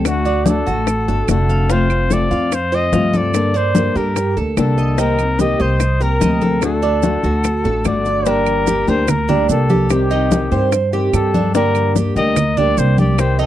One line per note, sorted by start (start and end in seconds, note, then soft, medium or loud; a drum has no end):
0.00 0.61 D2 medium
0.00 0.25 A4 medium
0.05 0.25 D3 medium
0.05 0.25 A3 medium
0.05 0.26 D4 medium
0.05 0.25 F#4 medium
0.05 0.51 F#4 medium
0.05 high bongo medium
0.05 claves medium
0.05 maracas medium
0.25 0.45 A3 soft
0.25 0.66 D4 medium
0.25 0.46 D4 soft
0.25 0.46 F#4 soft
0.25 high conga soft
0.25 maracas soft
0.46 0.66 D3 medium
0.46 0.66 A3 medium
0.46 0.66 D4 medium
0.46 0.65 F#4 medium
0.46 1.30 A4 medium
0.46 high bongo medium
0.46 high conga loud
0.46 maracas medium
0.66 1.05 A1 medium
0.66 0.86 A3 soft
0.66 0.86 D4 soft
0.66 0.86 F#4 soft
0.66 1.07 F#4 medium
0.66 high bongo soft
0.66 high conga soft
0.66 maracas soft
0.87 muted nylon-string guitar stroke medium
0.87 high bongo medium
0.87 high conga soft
0.87 claves medium
0.87 maracas medium
1.08 1.27 G1 medium
1.08 1.28 A3 soft
1.08 1.28 D4 soft
1.08 1.28 F#4 soft
1.08 1.48 A4 medium
1.08 high bongo soft
1.08 high conga soft
1.08 maracas soft
1.28 2.25 F1 medium
1.28 1.69 D3 medium
1.28 1.69 A3 medium
1.28 1.70 D4 medium
1.28 1.70 F#4 medium
1.28 1.73 A4 medium
1.28 high bongo medium
1.28 low bongo medium
1.28 high conga soft
1.28 claves medium
1.28 maracas medium
1.49 1.69 F5 medium
1.49 high bongo soft
1.49 high conga soft
1.49 maracas soft
1.69 1.90 C3 medium
1.69 1.90 F3 medium
1.69 1.90 A3 medium
1.69 1.89 C4 medium
1.69 2.10 F4 medium
1.69 1.88 F4 medium
1.69 2.14 C5 loud
1.69 high bongo medium
1.69 high conga soft
1.69 maracas medium
1.90 2.10 A3 soft
1.90 2.10 C4 soft
1.90 2.10 F4 soft
1.90 high bongo soft
1.90 high conga soft
1.90 claves medium
1.90 maracas soft
2.10 2.30 C3 medium
2.10 2.31 F3 medium
2.10 2.31 A3 medium
2.10 2.31 C4 medium
2.10 2.30 F4 medium
2.10 2.31 A4 medium
2.10 2.56 D5 medium
2.10 high bongo medium
2.10 high conga medium
2.10 maracas medium
2.31 2.89 F2 medium
2.31 2.52 A3 soft
2.31 2.51 C4 soft
2.31 2.51 F4 medium
2.31 2.71 F5 medium
2.31 high bongo soft
2.31 high conga soft
2.31 maracas soft
2.52 2.76 C5 loud
2.52 muted nylon-string guitar stroke medium
2.52 high bongo medium
2.52 high conga soft
2.52 claves medium
2.52 maracas medium
2.72 2.93 A3 soft
2.72 2.92 C4 soft
2.72 2.92 F4 soft
2.72 2.92 C5 medium
2.72 3.18 D#5 loud
2.72 high conga soft
2.72 maracas soft
2.92 3.89 G2 medium
2.92 3.33 C3 medium
2.92 3.33 F3 medium
2.92 3.34 A3 medium
2.92 3.34 C4 medium
2.92 3.34 F4 medium
2.92 3.13 F5 medium
2.92 high bongo medium
2.92 low bongo medium
2.92 high conga medium
2.92 maracas medium
3.13 3.53 A4 medium
3.13 3.58 D5 loud
3.13 high bongo soft
3.13 high conga medium
3.13 maracas soft
3.34 3.54 D3 medium
3.34 3.54 G3 medium
3.34 3.54 A#3 medium
3.34 3.54 D4 medium
3.34 3.53 A4 medium
3.34 high bongo medium
3.34 high conga soft
3.34 claves medium
3.34 maracas medium
3.54 3.74 A#3 soft
3.54 3.94 D4 medium
3.54 3.74 A4 soft
3.54 3.98 C5 loud
3.54 high conga soft
3.54 maracas soft
3.75 3.95 D3 medium
3.75 3.95 G3 medium
3.75 3.95 A#3 medium
3.75 3.95 D4 medium
3.75 3.94 A4 medium
3.75 high bongo medium
3.75 high conga loud
3.75 maracas medium
3.95 4.34 G2 medium
3.95 4.16 A#3 soft
3.95 4.16 D4 soft
3.95 4.35 G4 medium
3.95 4.15 A4 medium
3.95 4.37 A#4 medium
3.95 high bongo soft
3.95 high conga soft
3.95 maracas soft
4.16 muted nylon-string guitar stroke medium
4.16 high bongo medium
4.16 high conga soft
4.16 claves medium
4.16 maracas medium
4.36 4.56 D2 medium
4.36 4.57 A#3 soft
4.36 4.57 D4 soft
4.36 4.56 A4 soft
4.36 4.77 A4 medium
4.36 high bongo soft
4.36 high conga soft
4.36 maracas soft
4.57 5.54 C2 medium
4.57 4.98 D3 medium
4.57 4.98 G3 medium
4.57 4.98 A#3 medium
4.57 4.98 D4 medium
4.57 4.98 A4 medium
4.57 5.02 A4 medium
4.57 high bongo medium
4.57 low bongo medium
4.57 high conga soft
4.57 claves medium
4.57 maracas medium
4.78 4.98 D#5 medium
4.78 high bongo soft
4.78 high conga soft
4.78 maracas soft
4.98 5.18 C3 medium
4.98 5.18 D#3 medium
4.98 5.19 A#3 medium
4.98 5.18 C4 medium
4.98 5.38 D#4 medium
4.98 5.18 G4 medium
4.98 5.42 A#4 loud
4.98 high bongo medium
4.98 high conga soft
4.98 maracas medium
5.19 5.39 A#3 soft
5.19 5.39 C4 soft
5.19 5.39 G4 medium
5.19 high bongo soft
5.19 high conga soft
5.19 claves medium
5.19 maracas soft
5.39 5.59 C3 medium
5.39 5.59 D#3 medium
5.39 5.59 A#3 medium
5.39 5.60 C4 medium
5.39 5.59 G4 medium
5.39 5.63 D#5 medium
5.39 high bongo medium
5.39 high conga medium
5.39 maracas medium
5.60 6.18 C2 medium
5.60 5.80 A#3 soft
5.60 5.80 C4 soft
5.60 5.80 G4 medium
5.60 6.04 C5 medium
5.60 6.00 D#5 medium
5.60 high bongo soft
5.60 high conga soft
5.60 maracas soft
5.80 muted nylon-string guitar stroke medium
5.80 high bongo medium
5.80 high conga soft
5.80 claves medium
5.80 maracas medium
6.00 6.20 A#3 soft
6.00 6.20 C4 soft
6.00 6.20 G4 medium
6.00 6.21 A#4 medium
6.00 6.63 A#4 loud
6.00 high conga soft
6.00 maracas soft
6.20 7.18 D2 medium
6.20 6.61 C3 medium
6.20 6.61 A#3 medium
6.20 6.62 C4 medium
6.20 6.62 G4 medium
6.20 6.41 D#5 medium
6.20 high bongo medium
6.20 low bongo medium
6.20 high conga medium
6.20 maracas medium
6.41 6.82 A4 medium
6.41 high bongo soft
6.41 high conga medium
6.41 maracas soft
6.61 6.82 D3 medium
6.61 6.82 A3 medium
6.61 6.82 D4 medium
6.61 6.82 F#4 medium
6.61 7.83 A4 medium
6.61 high bongo medium
6.61 claves medium
6.61 maracas medium
6.82 7.02 A3 soft
6.82 7.23 D4 medium
6.82 7.02 D4 soft
6.82 7.02 F#4 soft
6.82 high conga soft
6.82 maracas soft
7.02 7.23 D3 medium
7.02 7.23 A3 medium
7.02 7.22 D4 medium
7.02 7.22 F#4 medium
7.02 high bongo medium
7.02 high conga medium
7.02 maracas medium
7.23 7.62 D2 medium
7.23 7.43 A3 soft
7.23 7.44 D4 soft
7.23 7.43 F#4 soft
7.23 7.64 F#4 medium
7.23 high bongo soft
7.23 high conga soft
7.23 maracas soft
7.44 muted nylon-string guitar stroke medium
7.44 high bongo medium
7.44 high conga soft
7.44 claves medium
7.44 maracas medium
7.64 7.84 A1 medium
7.64 7.84 A3 soft
7.64 7.84 D4 soft
7.64 7.84 F#4 soft
7.64 8.05 A4 medium
7.64 high bongo soft
7.64 high conga soft
7.64 maracas soft
7.84 8.82 G1 medium
7.84 8.25 D3 medium
7.84 8.26 A3 medium
7.84 8.26 D4 medium
7.84 8.26 F#4 medium
7.84 8.30 D5 medium
7.84 high bongo medium
7.84 low bongo medium
7.84 high conga soft
7.84 claves medium
7.84 maracas medium
8.05 8.26 D5 medium
8.05 high bongo soft
8.05 high conga soft
8.05 maracas soft
8.26 8.66 D3 medium
8.26 8.66 G3 medium
8.26 8.67 A#3 medium
8.26 8.66 D4 medium
8.26 8.67 D4 medium
8.26 8.67 G4 medium
8.26 8.91 A#4 loud
8.26 high bongo medium
8.26 high conga soft
8.26 maracas medium
8.46 high conga soft
8.46 claves medium
8.46 maracas soft
8.67 8.87 G3 soft
8.67 8.87 A#3 medium
8.67 8.86 D4 medium
8.67 8.87 G4 medium
8.67 8.86 G4 medium
8.67 high bongo medium
8.67 high conga medium
8.67 maracas medium
8.87 9.46 D2 medium
8.87 9.07 G3 medium
8.87 9.07 A#3 medium
8.87 9.07 D4 medium
8.87 9.07 G4 medium
8.87 9.28 A#4 medium
8.87 9.11 C5 medium
8.87 high bongo soft
8.87 high conga soft
8.87 maracas soft
9.08 9.50 A#4 loud
9.08 muted nylon-string guitar stroke medium
9.08 high bongo medium
9.08 high conga soft
9.08 low conga medium
9.08 claves medium
9.08 maracas medium
9.28 9.48 G3 medium
9.28 9.49 A#3 medium
9.28 9.69 D4 loud
9.28 9.49 D4 medium
9.28 9.49 G4 medium
9.28 high conga soft
9.28 low conga medium
9.28 maracas soft
9.49 10.46 C2 medium
9.49 9.89 G3 medium
9.49 9.90 A#3 medium
9.49 9.90 D4 medium
9.49 9.90 G4 medium
9.49 9.88 A4 medium
9.49 high bongo soft
9.49 low bongo medium
9.49 high conga soft
9.49 maracas medium
9.70 10.10 G4 medium
9.70 high bongo soft
9.70 high conga medium
9.70 maracas soft
9.90 10.31 C3 medium
9.90 10.30 D#3 medium
9.90 10.31 G3 medium
9.90 10.31 C4 medium
9.90 10.31 G4 medium
9.90 10.69 G4 medium
9.90 high bongo medium
9.90 high conga soft
9.90 claves medium
9.90 maracas medium
10.11 10.51 D#4 medium
10.11 high conga soft
10.11 maracas soft
10.31 10.51 D#3 medium
10.31 10.51 G3 medium
10.31 10.51 C4 medium
10.31 10.50 G4 medium
10.31 high bongo medium
10.31 high conga loud
10.31 maracas medium
10.51 11.09 G2 loud
10.51 10.71 D#3 medium
10.51 10.71 G3 medium
10.51 10.71 C4 medium
10.51 10.72 G4 medium
10.51 10.92 C5 medium
10.51 high bongo soft
10.51 maracas soft
10.72 muted nylon-string guitar stroke medium
10.72 high bongo medium
10.72 high conga soft
10.72 claves medium
10.72 maracas medium
10.93 11.11 D#3 soft
10.93 11.13 G3 medium
10.93 11.13 C4 medium
10.93 11.13 G4 medium
10.93 11.33 G4 medium
10.93 high conga soft
10.93 maracas soft
11.13 12.10 G2 medium
11.13 11.53 D#3 medium
11.13 11.54 G3 medium
11.13 11.54 C4 medium
11.13 11.54 G4 medium
11.13 11.52 A4 medium
11.13 high bongo soft
11.13 low bongo medium
11.13 high conga soft
11.13 claves medium
11.13 maracas medium
11.34 11.54 D4 medium
11.34 high bongo soft
11.34 high conga medium
11.34 maracas soft
11.54 11.95 D3 medium
11.54 11.95 G3 medium
11.54 11.95 A#3 medium
11.54 11.95 D4 medium
11.54 11.96 G4 medium
11.54 11.93 A#4 loud
11.54 high bongo medium
11.54 high conga soft
11.54 maracas medium
11.75 high conga soft
11.75 claves medium
11.75 maracas soft
11.96 12.15 G3 medium
11.96 12.16 A#3 medium
11.96 12.16 D4 medium
11.96 12.16 G4 medium
11.96 12.15 G4 medium
11.96 high bongo medium
11.96 high conga medium
11.96 maracas medium
12.16 12.73 D2 loud
12.16 12.36 G3 medium
12.16 12.37 A#3 medium
12.16 12.36 D4 medium
12.16 12.36 G4 medium
12.16 12.56 A#4 medium
12.16 12.59 D#5 loud
12.16 high bongo soft
12.16 high conga soft
12.16 maracas soft
12.36 muted nylon-string guitar stroke medium
12.36 high bongo medium
12.36 high conga soft
12.36 low conga medium
12.36 claves medium
12.36 maracas medium
12.57 12.77 G3 medium
12.57 12.77 A#3 medium
12.57 12.97 D4 medium
12.57 12.78 D4 medium
12.57 12.77 G4 medium
12.57 12.80 D5 loud
12.57 high conga soft
12.57 low conga medium
12.57 maracas soft
12.77 13.46 C2 loud
12.77 13.18 G3 medium
12.77 13.18 A#3 medium
12.77 13.19 D4 medium
12.77 13.19 G4 medium
12.77 12.99 C5 loud
12.77 high bongo soft
12.77 low bongo medium
12.77 high conga soft
12.77 maracas medium
12.98 13.38 G4 medium
12.98 13.22 D5 medium
12.98 high bongo soft
12.98 high conga medium
12.98 maracas soft
13.18 13.46 C3 medium
13.18 13.46 D#3 medium
13.18 13.46 G3 medium
13.18 13.46 C4 medium
13.18 13.46 G4 medium
13.18 13.40 C5 loud
13.18 high bongo medium
13.18 claves medium
13.18 maracas medium
13.39 13.46 D#4 medium
13.39 13.46 A4 medium
13.39 high conga soft
13.39 maracas soft